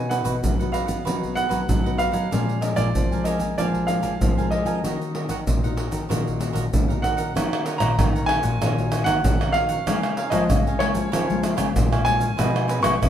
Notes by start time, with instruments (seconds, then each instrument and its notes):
Already playing: nylon-string guitar B2, cavaquinho D#5 F#5, grand piano G#5
0.09 nylon-string guitar B3 D#4 F#4, cavaquinho F#4 B4 D#5 F#5, grand piano F#5, pandeiro, shaker
0.24 nylon-string guitar B2, cavaquinho F#4 B4 D#5 F#5, pandeiro, shaker, surdo
0.43 nylon-string guitar F#2 F#3, pandeiro, shaker, surdo
0.59 nylon-string guitar B3 D#4 F#4, cavaquinho B4 D#5 F#5, pandeiro, shaker
0.72 cavaquinho F#4 B4 D#5 F#5, grand piano F5, pandeiro, shaker
0.86 nylon-string guitar B3, cavaquinho B4 D#5 F#5, pandeiro, shaker, surdo
1.05 nylon-string guitar B2 F#3 B3 D#4 F#4, cavaquinho F#4 B4 D#5 F#5, pandeiro, shaker, surdo
1.23 pandeiro, shaker, surdo
1.34 nylon-string guitar B3 D#4 F#4, cavaquinho F#4 B4 D#5 F#5, grand piano F#5, pandeiro, shaker
1.49 nylon-string guitar F#3, cavaquinho F#4 B4 D#5 F#5, pandeiro, shaker, surdo
1.68 nylon-string guitar F#2 F#3, pandeiro, shaker, surdo
1.84 nylon-string guitar B3 D#4 F#4, cavaquinho B4 D#5 F#5, pandeiro, shaker
1.97 cavaquinho F#4 B4 D#5 F#5, grand piano F5, pandeiro, shaker, surdo
2.12 nylon-string guitar F#3, cavaquinho B4 D#5 F#5, pandeiro, shaker
2.31 nylon-string guitar A#2 F3 G#3 D4, cavaquinho D4 A#4 F5 G#5, pandeiro, shaker, surdo
2.49 pandeiro, shaker
2.61 nylon-string guitar F3 G#3 D4, cavaquinho D4 A#4 F5 G#5, grand piano D#5, pandeiro, shaker
2.76 nylon-string guitar A#2, cavaquinho D4 A#4 F5 G#5, grand piano D5, pandeiro, shaker, surdo
2.95 nylon-string guitar F2 F3, pandeiro, shaker, surdo
3.11 nylon-string guitar F3 G#3 D4, cavaquinho A#4 F5 G#5, pandeiro, shaker
3.24 cavaquinho D4 A#4 F5 G#5, grand piano D#5, pandeiro, shaker
3.39 nylon-string guitar A#3, cavaquinho A#4 F5 G#5, pandeiro, shaker, surdo
3.58 nylon-string guitar A#2 F3 G#3 D4, cavaquinho D4 A#4 F5 G#5, grand piano D5, pandeiro, shaker, surdo
3.75 pandeiro, shaker, surdo
3.87 nylon-string guitar F3 G#3 D4, cavaquinho D4 A#4 F5 G#5, grand piano F5, pandeiro, shaker
4.02 nylon-string guitar F3, cavaquinho D4 A#4 F5 G#5, pandeiro, shaker, surdo
4.21 nylon-string guitar F2 F3, pandeiro, shaker, surdo
4.37 nylon-string guitar F3 G#3 D4, cavaquinho A#4 F5 G#5, pandeiro, shaker
4.51 cavaquinho D4 A#4 F5 G#5, grand piano D#5, pandeiro
4.65 nylon-string guitar F3, cavaquinho A#4 F5 G#5, pandeiro, shaker
4.84 nylon-string guitar D#3 A#3 D#4 F#4, cavaquinho F#4 A#4 D#5 F#5, pandeiro, shaker, surdo
5.01 pandeiro, shaker
5.14 nylon-string guitar A#3 D#4 F#4, cavaquinho F#4 A#4 D#5 F#5, pandeiro
5.29 nylon-string guitar D#3, cavaquinho F#4 A#4 D#5 F#5, pandeiro, shaker, surdo
5.47 nylon-string guitar A#2, pandeiro, shaker, surdo
5.63 nylon-string guitar A#3 D#4 F#4, cavaquinho A#4 D#5 F#5, pandeiro, shaker
5.77 cavaquinho F#4 A#4 D#5 F#5, pandeiro
5.91 nylon-string guitar D#3, cavaquinho A#4 D#5 F#5, pandeiro, shaker, surdo
6.09 nylon-string guitar A#2 D#3 A#3 D#4 F#4, cavaquinho F#4 A#4 D#5 F#5, pandeiro, shaker, surdo
6.27 pandeiro, shaker, surdo
6.39 nylon-string guitar A#3 D#4 F#4, cavaquinho F#4 A#4 D#5 F#5, pandeiro, shaker
6.53 nylon-string guitar A#2, cavaquinho F#4 A#4 D#5 F#5, pandeiro, shaker, surdo
6.73 nylon-string guitar A#2 C#3, pandeiro, shaker, surdo
6.88 nylon-string guitar A#3 D#4 F#4, cavaquinho A#4 D#5 F#5, pandeiro, shaker
7.02 nylon-string guitar D#3, cavaquinho F#4 A#4 D#5 F#5, grand piano F#5, pandeiro, shaker, surdo
7.17 cavaquinho A#4 D#5 F#5, pandeiro, shaker
7.35 nylon-string guitar D#3 A#3 C#4 F#4, cavaquinho D#4 A#4 C#5 F#5, pandeiro, tamborim, shaker, surdo
7.53 pandeiro, tamborim, shaker
7.66 cavaquinho D#4 A#4 C#5 F#5, pandeiro, shaker
7.78 nylon-string guitar A#2 A#3 C#4 F#4, cavaquinho D#4 A#4 C#5 F#5, grand piano A#5, pandeiro, tamborim, shaker, surdo
7.99 nylon-string guitar A#2 D#3, pandeiro, tamborim, shaker, surdo
8.15 cavaquinho A#4 C#5 F#5, pandeiro, shaker
8.26 nylon-string guitar A#3 C#4 F#4, cavaquinho D#4 A#4 C#5, grand piano G#5, pandeiro, tamborim
8.30 cavaquinho F#5
8.43 nylon-string guitar A#2, cavaquinho A#4 C#5 F#5, pandeiro, shaker, surdo
8.61 nylon-string guitar A#2 D#3, cavaquinho D#4 A#4 C#5 F#5, pandeiro, tamborim, shaker, surdo
8.78 nylon-string guitar A#3 C#4 F#4, pandeiro, shaker, surdo
8.92 cavaquinho D#4 A#4 C#5 F#5, pandeiro, tamborim, shaker
9.04 nylon-string guitar D#3 A#3 C#4 F#4, cavaquinho D#4 A#4 C#5 F#5, grand piano F#5, pandeiro, tamborim, shaker, surdo
9.24 nylon-string guitar A#2 D#3, pandeiro, shaker, surdo
9.41 cavaquinho A#4 C#5 F#5, pandeiro, tamborim, shaker
9.53 nylon-string guitar A#3 C#4 F#4, cavaquinho D#4 A#4 C#5 F#5, grand piano F5, pandeiro
9.69 cavaquinho A#4 C#5 F#5, pandeiro, shaker
9.87 nylon-string guitar C#3 G#3 A#3 F4, cavaquinho A#4 C#5 F5 G#5, pandeiro, tamborim, shaker, surdo
10.03 pandeiro, tamborim, shaker
10.17 cavaquinho A#4 C#5 F5 G#5, pandeiro
10.30 nylon-string guitar F3 G#3 A#3 F4, cavaquinho A#4 C#5 F5 G#5, grand piano D#5, pandeiro, tamborim, shaker, surdo
10.50 nylon-string guitar C#3, pandeiro, tamborim, shaker, surdo
10.67 cavaquinho C#5 F5 G#5, pandeiro, shaker
10.79 nylon-string guitar G#3 A#3 F4, cavaquinho A#4 C#5 F5 G#5, grand piano C#5, pandeiro, tamborim
10.94 nylon-string guitar F3, cavaquinho C#5 F5 G#5, pandeiro, shaker, surdo
11.12 nylon-string guitar C#3 F3, cavaquinho A#4 C#5 F5 G#5, pandeiro, tamborim, shaker, surdo
11.30 nylon-string guitar G#3 A#3 F4, pandeiro, shaker, surdo
11.43 cavaquinho A#4 C#5 F5 G#5, pandeiro, tamborim, shaker
11.57 nylon-string guitar C#3 G#3 A#3 F4, cavaquinho A#4 C#5 F5 G#5, pandeiro, tamborim, shaker, surdo
11.76 nylon-string guitar A#2 C#3, pandeiro, shaker, surdo
11.92 cavaquinho C#5 F5 G#5, pandeiro, tamborim, shaker
12.05 nylon-string guitar G#3 A#3 F4, cavaquinho A#4 C#5 F5 G#5, grand piano G#5, pandeiro, surdo
12.19 cavaquinho C#5 F5 G#5, pandeiro, shaker
12.37 nylon-string guitar B2 F3, cavaquinho F4 G#4 B4 D#5, pandeiro, tamborim, shaker, surdo
12.41 nylon-string guitar G#3 D#4
12.56 pandeiro, tamborim, shaker
12.68 cavaquinho F4 G#4 B4 D#5, pandeiro, shaker
12.82 nylon-string guitar B2 F3 G#3 D#4, cavaquinho F4 G#4 B4 D#5, grand piano C#6, pandeiro, tamborim, shaker, surdo
13.02 nylon-string guitar B2, pandeiro, tamborim, shaker, surdo